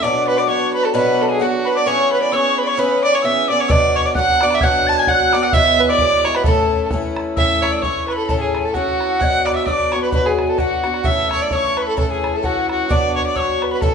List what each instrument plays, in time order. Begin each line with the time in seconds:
0.02 twelve-string acoustic guitar B2 F#3 B3 D4 F#4, fiddle D5, tin whistle D6
0.28 fiddle B4, tin whistle B5
0.37 fiddle D5, tin whistle D6
0.48 twelve-string acoustic guitar F#3 B3 D4 F#4, fiddle C#5, tin whistle C#6
0.73 fiddle B4, tin whistle B5
0.83 fiddle A4, tin whistle A5
0.94 twelve-string acoustic guitar B2 F#3 B3 D4 F#4, fiddle B4, tin whistle B5
1.22 fiddle A4
1.29 fiddle G#4, tin whistle G#5
1.40 twelve-string acoustic guitar F#3 B3 D4 F#4, fiddle F#4, tin whistle F#5
1.65 fiddle B4, tin whistle B5
1.75 fiddle D5, tin whistle D6
1.85 twelve-string acoustic guitar C#3 E3 B3 C#4 G#4, fiddle C#5, tin whistle C#6
2.11 fiddle B4, tin whistle B5
2.22 fiddle D5
2.31 twelve-string acoustic guitar E3 B3 C#4 G#4, fiddle C#5, tin whistle E6
2.36 tin whistle C#6
2.57 fiddle B4, tin whistle B5
2.64 fiddle D5, tin whistle C#6
2.69 fiddle C#5
2.77 twelve-string acoustic guitar C#3 E3 B3 C#4 G#4, fiddle B4, tin whistle B5
3.03 fiddle D5, tin whistle D6
3.13 fiddle C#5, tin whistle C#6
3.22 twelve-string acoustic guitar E3 B3 C#4, fiddle E5, tin whistle E6
3.26 twelve-string acoustic guitar G#4
3.48 twelve-string acoustic guitar C#4 G#4, fiddle D5, tin whistle D6
3.52 twelve-string acoustic guitar B3
3.59 fiddle C#5, tin whistle C#6
3.68 twelve-string acoustic guitar B2 F#3 B3 D4 F#4, fiddle D5, tin whistle D6 E6, bodhran
3.95 fiddle C#5, tin whistle C#6
4.04 fiddle D5, tin whistle D6
4.15 twelve-string acoustic guitar F#3 B3 D4 F#4, fiddle F#5, tin whistle F#6, bodhran
4.28 bodhran
4.41 twelve-string acoustic guitar B3 D4 F#4, fiddle D5, tin whistle D6, bodhran
4.50 fiddle E5, bodhran
4.61 twelve-string acoustic guitar B2 F#3 B3 D4 F#4, fiddle F#5, tin whistle G#6, bodhran
4.65 tin whistle F#6
4.87 fiddle A5, tin whistle A6
4.97 fiddle G#5, tin whistle G#6
5.07 twelve-string acoustic guitar F#3 B3 D4 F#4, fiddle F#5, tin whistle F#6 G#6, bodhran
5.20 bodhran
5.33 twelve-string acoustic guitar B3 D4 F#4, fiddle D5, tin whistle D6, bodhran
5.43 fiddle F#5, tin whistle F#6
5.52 twelve-string acoustic guitar E2 B2 F#3 G#3 B3 E4, fiddle E5, tin whistle E6, bodhran
5.80 fiddle B4
5.88 fiddle D5, tin whistle D6
5.98 twelve-string acoustic guitar F#3 G#3 B3 E4, bodhran
6.12 bodhran
6.25 twelve-string acoustic guitar F#3 G#3 B3 E4, fiddle C#5, bodhran
6.34 fiddle B4, tin whistle B5, bodhran
6.44 twelve-string acoustic guitar A2 E3 A3 C#4 E4, fiddle A4, tin whistle B5, bodhran
6.48 tin whistle A5
6.91 twelve-string acoustic guitar E3 A3 C#4 E4, bodhran
7.03 bodhran
7.16 bodhran
7.36 twelve-string acoustic guitar A2 E3 A3 C#4 E4, fiddle E5, tin whistle E6, bodhran
7.62 fiddle C#5, bodhran
7.72 fiddle D5
7.82 twelve-string acoustic guitar E3 A3 C#4 E4, fiddle C#5, tin whistle C#6, bodhran
7.96 bodhran
8.08 fiddle B4, tin whistle C#6, bodhran
8.12 tin whistle B5
8.18 fiddle A4
8.27 twelve-string acoustic guitar A2 E3 A3 C#4 E4, fiddle A4, tin whistle A5, bodhran
8.40 fiddle G#4, tin whistle G#5
8.55 bodhran
8.64 fiddle A4, tin whistle A5
8.74 twelve-string acoustic guitar E3 A3 C#4 E4, fiddle F#4, tin whistle F#5, bodhran
8.87 bodhran
9.01 bodhran
9.20 twelve-string acoustic guitar B2 F#3 B3 D4 F#4, fiddle F#5, tin whistle G#6, bodhran
9.25 tin whistle F#6
9.46 fiddle D5, tin whistle D6, bodhran
9.56 fiddle E5, tin whistle E6
9.66 twelve-string acoustic guitar F#3 B3 D4 F#4, fiddle D5, tin whistle E6, bodhran
9.71 tin whistle D6
9.79 bodhran
9.92 twelve-string acoustic guitar B3 D4 F#4, fiddle C#5, tin whistle C#6, bodhran
10.03 fiddle B4, tin whistle B5
10.12 twelve-string acoustic guitar B2 F#3 B3 D4 F#4, fiddle B4, tin whistle B5, bodhran
10.26 fiddle G#4, tin whistle G#5
10.39 bodhran
10.49 fiddle A4, tin whistle A5
10.58 twelve-string acoustic guitar F#3 B3 D4 F#4, fiddle F#4, tin whistle F#5, bodhran
10.71 bodhran
10.84 twelve-string acoustic guitar B3 D4 F#4, bodhran
10.94 bodhran
11.04 twelve-string acoustic guitar A2 E3 A3 C#4 E4, fiddle E5, tin whistle E6, bodhran
11.31 fiddle C#5, bodhran
11.42 fiddle D5
11.51 twelve-string acoustic guitar E3 A3 C#4 E4, fiddle C#5, tin whistle E6, bodhran
11.56 tin whistle C#6
11.64 bodhran
11.77 fiddle B4, tin whistle C#6, bodhran
11.82 tin whistle B5
11.88 fiddle A4
11.97 twelve-string acoustic guitar A2 E3 A3 C#4 E4, fiddle A4, tin whistle A5, bodhran
12.11 fiddle G#4, tin whistle G#5
12.24 bodhran
12.34 fiddle A4, tin whistle A5
12.43 twelve-string acoustic guitar E3 A3 C#4 E4, fiddle F#4, tin whistle F#5, bodhran
12.57 bodhran
12.69 fiddle F#4, tin whistle F#5, bodhran
12.89 twelve-string acoustic guitar B2 F#3 B3 D4 F#4, fiddle D5, tin whistle D6, bodhran
13.15 fiddle C#5, tin whistle C#6
13.25 fiddle D5, tin whistle D6
13.35 twelve-string acoustic guitar F#3 B3 D4 F#4, fiddle C#5, tin whistle E6, bodhran
13.40 tin whistle C#6
13.49 bodhran
13.62 fiddle B4, bodhran
13.71 fiddle B4, tin whistle B5
13.82 twelve-string acoustic guitar A2 E3 A3 C#4 A4, fiddle A4, tin whistle A5, bodhran